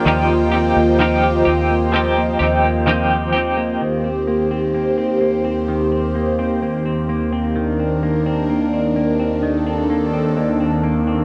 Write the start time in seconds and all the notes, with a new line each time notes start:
Already playing: A#3 D4 F4 G5
0.05 D#2 D#3 F3 C4 D#4 G4 C5 D#5
0.29 A#3
0.52 C4 D#4 G4
0.76 D#2 A#3
0.99 D#3 F3 C4 D#4 G4
1.23 G4
1.45 D#2 C4 D#4 G4
1.70 A#3
1.92 F3 C4 D#4 G4
2.17 A#3
2.39 D#2 C4 D#4 G4
2.64 A#3
2.86 D#3 F3 C4 D#4 G4
3.10 G4
3.32 C4 D#4 G4
3.57 A#3
3.81 D#2 D#3 G4 C5
4.04 C4
4.27 A#3
4.51 C4
4.74 A#3
4.98 C4
5.21 A#3
5.45 C4
5.68 D#3
5.92 C4
6.15 A#3
6.39 C4
6.62 A#3
6.86 C4
7.09 A#3
7.33 C4
7.56 D#2 D#3 D4 A#4
7.79 C4
8.03 A#3
8.26 C4
8.50 A#3
8.73 C4
8.96 A#3
9.19 C4
9.43 D#3 A4
9.67 C4
9.90 A#3
10.13 C4
10.37 A#3
10.60 C4
10.84 A#3
11.07 C4